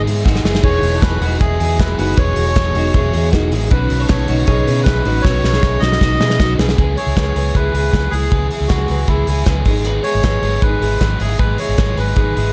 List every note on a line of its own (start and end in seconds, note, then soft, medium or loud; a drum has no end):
0.00 0.40 B3 medium
0.00 0.41 D#4 medium
0.00 0.41 G#4 medium
0.04 0.21 G#2 loud
0.04 0.23 G#3 medium
0.04 0.23 B3 soft
0.04 0.24 D#4 medium
0.04 0.26 E4 medium
0.04 0.24 G#4 medium
0.04 open hi-hat medium
0.23 0.42 G#1 loud
0.23 0.44 G#2 medium
0.23 0.44 D#3 loud
0.23 0.44 G#3 medium
0.23 0.44 B3 medium
0.23 0.43 D#4 loud
0.23 0.45 F#4 medium
0.23 0.41 G#4 medium
0.23 kick loud
0.23 snare medium
0.36 snare medium
0.42 0.60 F#1 medium
0.42 0.61 G#3 soft
0.42 0.62 B3 medium
0.42 0.63 D#4 medium
0.42 0.63 E4 medium
0.42 0.63 G#4 medium
0.42 snare medium
0.55 snare medium
0.61 0.80 E1 loud
0.61 0.82 E3 medium
0.61 3.68 E3 medium
0.61 0.82 G#3 medium
0.61 0.83 B3 medium
0.61 6.74 B3 medium
0.61 3.29 D#4 medium
0.61 0.81 D#4 medium
0.61 3.29 E4 medium
0.61 3.68 F#4 medium
0.61 0.79 G#4 medium
0.61 3.68 G#4 medium
0.61 3.30 G#4 medium
0.61 0.91 B4 medium
0.61 1.04 C#5 loud
0.61 3.68 D#5 medium
0.61 0.99 C#6 medium
0.61 kick loud
0.61 crash medium
0.80 0.99 E1 loud
0.80 1.00 B3 soft
0.80 1.01 D#4 medium
0.80 1.01 G#4 medium
0.80 open hi-hat medium
0.93 1.21 A4 medium
0.93 1.20 C#5 medium
1.00 1.18 E1 loud
1.00 1.20 E3 medium
1.00 1.21 G#3 medium
1.00 1.21 B3 medium
1.00 1.21 D#4 medium
1.00 1.19 G#4 medium
1.00 1.38 B4 medium
1.00 1.38 B5 medium
1.00 kick loud
1.00 snare loud
1.00 closed hi-hat medium
1.20 1.37 E1 loud
1.20 1.39 B3 soft
1.20 1.40 D#4 soft
1.20 1.40 F#4 medium
1.20 1.40 G#4 soft
1.20 open hi-hat medium
1.39 1.57 E1 loud
1.39 1.59 G#3 medium
1.39 1.60 B3 medium
1.39 1.60 D#4 medium
1.39 1.60 E4 medium
1.39 1.80 G#4 medium
1.39 1.58 G#4 medium
1.39 1.77 G#5 medium
1.39 kick loud
1.39 closed hi-hat medium
1.60 1.81 E2 loud
1.60 1.79 B3 soft
1.60 1.79 D#4 soft
1.60 1.97 E4 medium
1.60 1.79 G#4 soft
1.60 open hi-hat medium
1.79 1.95 E1 loud
1.79 1.98 E3 medium
1.79 1.99 G#3 medium
1.79 1.99 B3 medium
1.79 1.98 D#4 medium
1.79 1.97 G#4 medium
1.79 1.97 B4 medium
1.79 1.97 B5 medium
1.79 kick loud
1.79 snare loud
1.79 closed hi-hat medium
1.98 2.14 F#1 medium
1.98 2.16 B3 soft
1.98 2.17 D#4 soft
1.98 2.18 F#4 medium
1.98 2.17 G#4 medium
1.98 2.19 B4 loud
1.98 2.17 B5 medium
1.98 open hi-hat medium
2.16 2.34 E1 loud
2.16 2.36 E3 medium
2.16 2.36 G#3 medium
2.16 2.37 B3 medium
2.16 2.37 D#4 medium
2.16 2.35 G#4 medium
2.16 2.45 B4 loud
2.16 3.29 C#5 loud
2.16 3.29 C#6 medium
2.16 kick loud
2.16 closed hi-hat medium
2.36 2.53 E1 medium
2.36 2.57 B3 soft
2.36 2.57 D#4 medium
2.36 2.56 G#4 medium
2.36 open hi-hat medium
2.46 2.74 A4 medium
2.46 2.74 C#5 medium
2.56 2.72 E1 loud
2.56 2.76 E3 medium
2.56 2.76 G#3 medium
2.56 2.76 B3 medium
2.56 2.76 D#4 medium
2.56 2.75 G#4 medium
2.56 kick loud
2.56 snare loud
2.56 closed hi-hat medium
2.75 2.91 E1 loud
2.75 2.96 D#4 medium
2.75 2.95 F#4 medium
2.75 2.95 G#4 medium
2.75 open hi-hat medium
2.79 2.94 B3 soft
2.94 3.10 E1 loud
2.94 3.14 G#3 medium
2.94 3.14 B3 medium
2.94 3.14 D#4 medium
2.94 3.13 E4 medium
2.94 3.12 G#4 medium
2.94 kick loud
2.94 closed hi-hat medium
3.13 3.29 E2 loud
3.13 3.33 B3 medium
3.13 3.33 D#4 medium
3.13 3.33 E4 medium
3.13 3.33 G#4 medium
3.13 open hi-hat medium
3.32 3.52 E1 loud
3.32 3.52 E3 loud
3.32 3.52 G#3 loud
3.32 3.53 B3 medium
3.32 3.71 D#4 medium
3.32 3.53 D#4 medium
3.32 3.72 E4 medium
3.32 3.51 F#4 medium
3.32 3.72 G#4 medium
3.32 3.52 G#4 loud
3.32 kick loud
3.32 snare loud
3.32 closed hi-hat medium
3.52 3.68 A1 medium
3.52 3.73 B3 medium
3.52 3.72 D#4 medium
3.52 3.70 E4 medium
3.52 3.72 G#4 medium
3.52 open hi-hat medium
3.70 3.87 B1 loud
3.70 3.91 B2 medium
3.70 6.75 C#3 medium
3.70 3.91 D#3 medium
3.70 3.92 F#3 medium
3.70 6.74 C#4 medium
3.70 6.75 C#4 medium
3.70 3.92 C#4 medium
3.70 6.74 D#4 medium
3.70 3.99 F#4 medium
3.70 4.06 B4 medium
3.70 3.98 B4 loud
3.70 6.75 B4 medium
3.70 4.07 B5 medium
3.70 kick loud
3.70 closed hi-hat medium
3.74 3.92 D#4 medium
3.74 3.90 B4 medium
3.90 4.06 B1 loud
3.90 4.10 C#4 medium
3.90 4.10 D#4 medium
3.90 4.10 B4 medium
3.90 open hi-hat medium
3.94 4.10 F#3 soft
4.00 4.28 A4 medium
4.00 4.27 C#5 medium
4.09 4.25 B1 loud
4.09 4.29 B2 medium
4.09 4.29 D#3 medium
4.09 4.30 F#3 medium
4.09 4.30 C#4 medium
4.09 4.30 D#4 medium
4.09 4.28 B4 medium
4.09 4.43 C#5 medium
4.09 4.45 C#6 medium
4.09 kick loud
4.09 snare loud
4.09 closed hi-hat medium
4.28 4.45 B1 medium
4.28 4.49 D#4 soft
4.28 4.47 F#4 medium
4.28 4.48 B4 soft
4.28 open hi-hat medium
4.32 4.47 F#3 soft
4.32 4.48 C#4 soft
4.45 4.63 B1 loud
4.45 4.67 F#3 medium
4.45 4.66 G#4 medium
4.45 4.82 C#5 medium
4.45 4.83 C#6 medium
4.45 kick loud
4.45 closed hi-hat medium
4.50 4.67 C#4 medium
4.50 4.66 D#4 medium
4.50 4.65 B4 medium
4.66 4.83 B2 loud
4.66 4.86 F#3 soft
4.66 4.87 C#4 soft
4.66 4.87 D#4 soft
4.66 5.04 E4 medium
4.66 5.03 G#4 medium
4.66 4.86 B4 medium
4.66 open hi-hat medium
4.83 5.02 B1 loud
4.83 5.05 B2 medium
4.83 5.06 D#3 medium
4.83 5.06 F#3 medium
4.83 5.24 B4 medium
4.83 5.21 B5 medium
4.83 kick loud
4.83 closed hi-hat medium
4.87 5.06 C#4 medium
4.87 5.05 D#4 medium
4.87 5.04 B4 medium
4.87 snare loud
5.05 5.21 A1 medium
5.05 5.24 F#3 soft
5.05 5.24 C#4 soft
5.05 5.25 D#4 soft
5.05 5.23 F#4 medium
5.05 5.24 B4 medium
5.05 open hi-hat medium
5.22 5.40 B1 loud
5.22 5.43 B2 medium
5.22 5.44 D#3 medium
5.22 5.44 F#3 medium
5.22 5.51 F#4 medium
5.22 5.82 C#5 loud
5.22 5.77 C#6 medium
5.22 kick loud
5.22 snare medium
5.26 5.44 C#4 medium
5.26 5.43 D#4 medium
5.26 5.42 B4 medium
5.43 5.59 B1 medium
5.43 5.63 F#3 medium
5.43 5.63 C#4 medium
5.43 5.63 D#4 medium
5.43 5.63 B4 medium
5.43 snare medium
5.53 5.81 E4 medium
5.53 5.81 G#4 medium
5.53 snare medium
5.62 5.79 B1 loud
5.62 5.82 B2 medium
5.62 5.82 D#3 medium
5.62 5.83 F#3 medium
5.62 5.83 C#4 medium
5.62 5.82 D#4 medium
5.62 5.81 B4 medium
5.62 kick loud
5.62 snare medium
5.80 5.98 B1 loud
5.80 6.01 D#4 soft
5.80 6.00 F#4 medium
5.80 6.01 B4 soft
5.80 6.54 D#5 loud
5.80 6.54 D#6 medium
5.80 snare medium
5.84 5.98 F#3 soft
5.84 6.00 C#4 soft
5.92 snare medium
5.99 6.17 B1 loud
5.99 6.20 F#3 medium
5.99 6.20 C#4 medium
5.99 6.19 D#4 medium
5.99 6.21 F#4 medium
5.99 6.19 B4 medium
5.99 kick loud
5.99 snare medium
6.20 6.41 B2 loud
6.20 6.39 F#3 soft
6.20 6.40 C#4 soft
6.20 6.40 D#4 medium
6.20 6.40 E4 medium
6.20 6.40 G#4 medium
6.20 6.40 B4 medium
6.20 snare medium
6.30 snare medium
6.39 6.55 B1 medium
6.39 6.59 B2 medium
6.39 6.59 D#3 medium
6.39 6.59 F#3 medium
6.39 6.60 C#4 medium
6.39 6.58 D#4 loud
6.39 6.59 F#4 medium
6.39 6.57 B4 medium
6.39 kick loud
6.39 snare loud
6.58 6.75 B1 medium
6.58 6.77 F#3 soft
6.58 6.78 C#4 medium
6.58 6.79 D#4 medium
6.58 6.78 G#4 medium
6.58 6.78 B4 medium
6.58 snare loud
6.69 snare loud
6.77 6.94 C#2 medium
6.77 6.97 C#3 medium
6.77 6.97 G#3 medium
6.77 6.97 B3 medium
6.77 6.97 E4 medium
6.77 6.95 G#4 medium
6.77 6.98 B4 medium
6.77 kick loud
6.77 closed hi-hat medium
6.97 7.15 B3 soft
6.97 7.15 E4 soft
6.97 7.16 G#4 medium
6.97 7.56 C#5 loud
6.97 open hi-hat medium
7.07 7.15 C#2 medium
7.15 7.32 C#2 loud
7.15 7.35 C#3 medium
7.15 7.35 G#3 medium
7.15 7.35 B3 medium
7.15 7.36 E4 medium
7.15 7.34 G#4 medium
7.15 7.35 B4 medium
7.15 kick loud
7.15 snare loud
7.15 closed hi-hat medium
7.35 7.51 C#2 medium
7.35 7.54 B3 soft
7.35 7.55 E4 soft
7.35 7.54 G#4 soft
7.35 7.55 B4 medium
7.35 open hi-hat medium
7.54 7.71 C#2 medium
7.54 7.74 G#3 medium
7.54 7.74 B3 medium
7.54 7.73 E4 medium
7.54 7.71 G#4 medium
7.54 8.14 B4 loud
7.54 kick loud
7.54 closed hi-hat medium
7.72 7.90 C#2 medium
7.72 7.91 B3 soft
7.72 7.92 E4 soft
7.72 7.92 G#4 soft
7.72 open hi-hat medium
7.91 8.09 C#2 loud
7.91 8.11 C#3 medium
7.91 8.12 G#3 medium
7.91 8.12 B3 medium
7.91 8.11 E4 medium
7.91 8.10 G#4 medium
7.91 8.13 B4 medium
7.91 kick loud
7.91 snare medium
7.91 closed hi-hat medium
8.11 8.28 C#2 medium
8.11 8.30 B3 soft
8.11 8.30 E4 soft
8.11 8.47 G#4 medium
8.11 8.31 G#4 soft
8.11 open hi-hat medium
8.29 8.48 C#2 loud
8.29 8.50 C#3 medium
8.29 8.50 G#3 medium
8.29 8.51 B3 medium
8.29 8.50 E4 medium
8.29 8.48 G#4 medium
8.29 8.51 B4 medium
8.29 kick loud
8.29 closed hi-hat medium
8.49 8.69 B3 soft
8.49 8.71 E4 soft
8.49 8.70 G#4 medium
8.49 open hi-hat medium
8.60 8.68 C#2 medium
8.67 8.86 C#2 loud
8.67 8.89 C#3 medium
8.67 8.89 G#3 medium
8.67 8.90 B3 medium
8.67 9.09 F#4 medium
8.67 kick loud
8.67 snare loud
8.67 closed hi-hat medium
8.72 8.88 E4 medium
8.72 8.87 G#4 medium
8.72 8.90 B4 medium
8.88 9.06 C#2 medium
8.88 9.08 B3 soft
8.88 9.09 E4 soft
8.88 9.08 G#4 soft
8.88 9.09 B4 medium
8.88 open hi-hat medium
9.07 9.24 C#2 loud
9.07 9.27 G#3 medium
9.07 9.28 B3 medium
9.07 9.44 E4 medium
9.07 9.28 E4 medium
9.07 9.26 G#4 medium
9.07 kick medium
9.07 closed hi-hat medium
9.27 9.43 C#2 medium
9.27 9.47 B3 soft
9.27 9.47 E4 soft
9.27 9.47 G#4 soft
9.27 open hi-hat medium
9.46 9.63 C#2 medium
9.46 9.66 C#3 medium
9.46 9.66 G#3 medium
9.46 9.67 B3 medium
9.46 9.66 E4 medium
9.46 9.65 G#4 medium
9.46 9.67 B4 medium
9.46 kick loud
9.46 snare medium
9.46 closed hi-hat medium
9.65 9.98 G#1 medium
9.65 9.84 B3 soft
9.65 9.85 D#4 medium
9.65 9.86 G#4 medium
9.65 kick medium
9.65 open hi-hat medium
9.69 9.84 G#3 soft
9.84 10.04 G#2 medium
9.84 10.04 D#3 medium
9.84 10.05 G#3 medium
9.84 10.05 B3 medium
9.84 10.03 D#4 medium
9.84 10.02 G#4 medium
9.84 10.06 B4 loud
9.84 closed hi-hat medium
10.03 10.22 G#3 soft
10.03 10.22 B3 soft
10.03 10.23 D#4 soft
10.03 10.24 E4 soft
10.03 10.23 G#4 medium
10.03 10.64 C#5 loud
10.03 open hi-hat medium
10.15 10.23 G#1 medium
10.22 10.40 G#1 medium
10.22 10.42 G#2 medium
10.22 10.43 D#3 medium
10.22 10.43 G#3 medium
10.22 10.43 B3 medium
10.22 10.43 D#4 medium
10.22 10.43 G#4 medium
10.22 10.43 B4 medium
10.22 kick loud
10.22 snare loud
10.22 closed hi-hat medium
10.42 10.59 G#1 medium
10.42 10.62 B3 soft
10.42 10.63 D#4 soft
10.42 10.63 G#4 soft
10.42 10.63 B4 medium
10.42 open hi-hat medium
10.47 10.61 G#3 soft
10.62 10.78 G#1 medium
10.62 10.82 G#3 medium
10.62 10.82 B3 medium
10.62 10.80 D#4 medium
10.62 10.79 G#4 medium
10.62 11.22 B4 loud
10.62 kick loud
10.62 closed hi-hat medium
10.80 10.97 G#1 medium
10.80 10.99 G#3 soft
10.80 11.00 B3 soft
10.80 11.01 D#4 soft
10.80 11.01 E4 medium
10.80 11.00 G#4 medium
10.80 open hi-hat medium
11.00 11.17 G#1 loud
11.00 11.20 G#2 medium
11.00 11.20 D#3 medium
11.00 11.20 G#3 medium
11.00 11.19 B3 medium
11.00 11.18 D#4 medium
11.00 11.17 G#4 medium
11.00 11.20 B4 medium
11.00 kick loud
11.00 snare loud
11.00 closed hi-hat medium
11.18 11.36 G#1 medium
11.18 11.38 G#3 soft
11.18 11.38 B3 soft
11.18 11.39 D#4 soft
11.18 11.39 E4 medium
11.18 11.38 G#4 soft
11.18 11.40 G#4 medium
11.18 open hi-hat medium
11.38 11.55 G#1 medium
11.38 11.58 G#2 medium
11.38 11.58 D#3 medium
11.38 11.58 G#3 medium
11.38 11.59 B3 medium
11.38 11.58 D#4 medium
11.38 11.57 G#4 medium
11.38 11.59 B4 medium
11.38 11.59 B4 loud
11.38 kick loud
11.38 closed hi-hat medium
11.58 11.77 G#3 soft
11.58 11.78 B3 soft
11.58 11.78 D#4 soft
11.58 11.78 E4 medium
11.58 11.78 G#4 soft
11.58 11.99 C#5 medium
11.58 open hi-hat medium
11.68 11.76 G#1 medium
11.78 11.94 G#1 medium
11.78 11.97 G#2 medium
11.78 11.98 D#3 medium
11.78 11.98 G#3 medium
11.78 11.98 B3 medium
11.78 11.97 D#4 medium
11.78 11.95 G#4 medium
11.78 11.96 B4 medium
11.78 kick loud
11.78 snare loud
11.78 closed hi-hat medium
11.97 12.13 G#1 loud
11.97 12.15 G#3 soft
11.97 12.17 B3 soft
11.97 12.17 D#4 soft
11.97 12.16 G#4 soft
11.97 12.17 B4 medium
11.97 12.53 B4 medium
11.97 open hi-hat medium
12.16 12.32 G#1 medium
12.16 12.36 G#3 medium
12.16 12.37 B3 medium
12.16 12.36 D#4 medium
12.16 12.35 G#4 medium
12.16 kick loud
12.16 closed hi-hat medium
12.36 12.52 G#1 medium
12.36 12.53 G#3 soft
12.36 12.53 B3 soft
12.36 12.53 D#4 soft
12.36 12.53 E4 medium
12.36 12.53 G#4 soft
12.36 open hi-hat medium